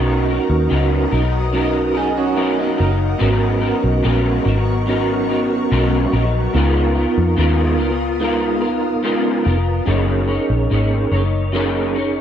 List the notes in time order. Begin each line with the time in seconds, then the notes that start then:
Already playing: B1 B2 D#3 F#3 B3 C#4 D#4 F#4 A#4 F#5 A#5 D#6
0.28 F#3 B3 D#4 A#4
0.50 D#2
0.69 C#2 B2 D#3 F#3 B3 D#4 A#4
1.11 B1 B3 D#4 A#4
1.16 F#3
1.53 F#3 B3 C#4 D#4 F#4 A#4
1.94 F#3 B3 D#4 G#4 A#4
2.17 C#4 F#4
2.35 B2 D#3 F#3 B3 D#4 A#4
2.59 A#3 D#4
2.77 F#1 F#3 D#4 A#4
3.18 G#1 G#2 C#3 F#3 B3 C#4 D#4 F#4 A#4 C#6
3.60 B3 D#4 A#4
3.65 F#3
3.84 B1
4.03 A#1 G#2 C#3 F#3 B3 D#4 A#4
4.44 G#1 F#3 B3 D#4 A#4
4.86 F#3 B3 C#4 D#4 F#4 A#4
4.90 A#4
5.29 F#3 B3 D#4 A#4
5.71 B1 G#2 C#3 F#3 B3 D#4 A#4
6.12 A#1 F#3 B3 D#4 A#4
6.54 C#2 C#3 G#3 B3 D#4 F4 A#4 F5 D#6
6.94 F4 A#4
6.98 B3
7.18 F2
7.37 D#2 C#3 G#3 B3 F4 A#4
7.78 C#2 B3 F4 A#4
8.20 G#3 B3 D#4 F4 A#4
8.61 F4 A#4
8.65 B3
9.03 C#3 G#3 B3 F4 A#4
9.44 F1 B3 F4 A#4
9.85 F#1 F#3 A#3 C#4 D#4 G#4 A#4 C#5
10.28 A#4 C#5
10.32 D#4
10.50 A#1
10.70 G#1 A#3 D#4 A#4 C#5
11.12 F#1 D#4 A#4 C#5
11.52 F#3 A#3 C#4 D#4 G#4 A#4 C#5
11.95 D#4 A#4 C#5